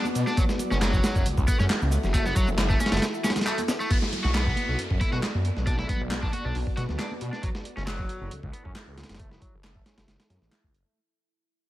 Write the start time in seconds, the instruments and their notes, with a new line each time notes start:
Already playing: ambient pad B3 F#4 B4 D5
0.05 high conga, shaker
0.15 detuned saw bass B2, closed hi-hat, shaker
0.27 overdriven electric guitar D4, snare, shaker
0.37 overdriven electric guitar F#3, ambient pad E4 A4, kick, closed hi-hat, high conga, shaker
0.49 snare, shaker
0.59 closed hi-hat, low conga, shaker
0.71 detuned saw bass F#1, overdriven electric guitar C#4, snare, high conga, shaker
0.82 overdriven electric guitar F#3, snare, clap, closed hi-hat, shaker
0.93 kick, shaker
1.04 snare, closed hi-hat, muted conga, high conga, shaker
1.15 detuned saw bass F#1, kick, shaker
1.26 detuned saw bass C#2, closed hi-hat, shaker
1.37 detuned saw bass C#2, kick, shaker
1.47 overdriven electric guitar B3, kick, closed hi-hat, high conga, shaker
1.59 detuned saw bass F#2, overdriven electric guitar C#4, snare, low conga, shaker
1.70 snare, clap, closed hi-hat, shaker
1.82 detuned saw bass C#2, high conga, shaker
1.92 closed hi-hat, shaker
2.04 detuned saw bass F#1, snare, shaker
2.14 overdriven electric guitar A3, kick, closed hi-hat, high conga, shaker
2.26 overdriven electric guitar B3, snare, shaker
2.36 overdriven electric guitar F#3, kick, closed hi-hat, low conga, shaker
2.48 detuned saw bass F#1, high conga, shaker
2.58 snare, clap, closed hi-hat, shaker
2.70 overdriven electric guitar A3, kick, shaker
2.80 overdriven electric guitar C#4, closed hi-hat, muted conga, high conga, shaker
2.86 snare, closed hi-hat
2.92 detuned saw bass F#1, overdriven electric guitar A3, snare, closed hi-hat, shaker
2.97 snare, closed hi-hat
3.02 snare, closed hi-hat, shaker
3.14 shaker
3.24 overdriven electric guitar C#4, snare, closed hi-hat, high conga, shaker
3.30 snare, closed hi-hat
3.36 snare, closed hi-hat, low conga, shaker
3.41 snare, closed hi-hat
3.47 overdriven electric guitar A3, clap, shaker
3.58 closed hi-hat, high conga, shaker
3.68 snare, closed hi-hat, shaker
3.80 overdriven electric guitar A3, shaker
3.90 ambient pad B3 F#4 A4 D5, overdriven electric guitar B3, kick, closed hi-hat, downlifter, high conga
4.02 snare
4.12 closed hi-hat, low conga
4.24 detuned saw bass B1, overdriven electric guitar F#4, snare, high conga
4.35 overdriven electric guitar B3, snare, clap, closed hi-hat
4.46 kick
4.56 closed hi-hat, high conga
4.68 detuned saw bass B1
4.79 detuned saw bass F#2, closed hi-hat
4.90 detuned saw bass F#2, kick
5.00 overdriven electric guitar E4, kick, closed hi-hat, high conga
5.12 detuned saw bass B2, overdriven electric guitar F#4, snare, low conga
5.23 snare, clap, closed hi-hat
5.35 detuned saw bass F#2, high conga
5.45 closed hi-hat
5.57 detuned saw bass B1, snare
5.67 overdriven electric guitar D4, ambient pad B4, kick, closed hi-hat, high conga
5.79 overdriven electric guitar E4, snare
5.89 overdriven electric guitar B3, kick, closed hi-hat, low conga
6.01 detuned saw bass B1, high conga
6.11 snare, clap, closed hi-hat
6.23 overdriven electric guitar D4, kick
6.33 overdriven electric guitar F#4, closed hi-hat, high conga
6.45 detuned saw bass B1, overdriven electric guitar D4
6.55 detuned saw bass B1, open hi-hat
6.67 kick
6.76 detuned saw bass B2, overdriven electric guitar F#4, snare, closed hi-hat, high conga
6.89 detuned saw bass D2, snare, low conga
6.99 overdriven electric guitar D4, snare, clap, closed hi-hat
7.11 high conga
7.21 detuned saw bass B2, closed hi-hat
7.33 overdriven electric guitar D4, snare
7.43 overdriven electric guitar F#3, ambient pad E4 A4, kick, closed hi-hat
7.55 snare
7.65 closed hi-hat
7.77 detuned saw bass F#1, overdriven electric guitar C#4, snare
7.87 overdriven electric guitar F#3, snare, clap, closed hi-hat
7.99 kick
8.09 closed hi-hat
8.21 detuned saw bass F#1
8.31 detuned saw bass C#2, closed hi-hat
8.43 detuned saw bass C#2, kick
8.53 overdriven electric guitar B3, closed hi-hat
8.65 detuned saw bass F#2, overdriven electric guitar C#4, kick
8.75 snare, clap, closed hi-hat
8.87 detuned saw bass C#2
8.98 snare, closed hi-hat
9.04 snare, closed hi-hat
9.09 detuned saw bass F#1, snare, closed hi-hat
9.15 snare, closed hi-hat
9.20 overdriven electric guitar A3, kick, closed hi-hat
9.31 overdriven electric guitar B3, snare
9.42 overdriven electric guitar F#3, kick, closed hi-hat
9.54 detuned saw bass F#1
9.64 snare, clap, closed hi-hat
9.76 overdriven electric guitar A3, kick
9.86 overdriven electric guitar C#4, snare, closed hi-hat
9.97 detuned saw bass F#1, overdriven electric guitar A3, snare, closed hi-hat
10.08 detuned saw bass F#1, snare, closed hi-hat
10.20 snare, closed hi-hat
10.30 detuned saw bass F#2, overdriven electric guitar C#4, snare, closed hi-hat
10.42 detuned saw bass A1, snare
10.52 overdriven electric guitar A3, snare, clap, closed hi-hat
10.64 detuned saw bass C#2, kick
10.74 detuned saw bass F#1, closed hi-hat
10.86 overdriven electric guitar A3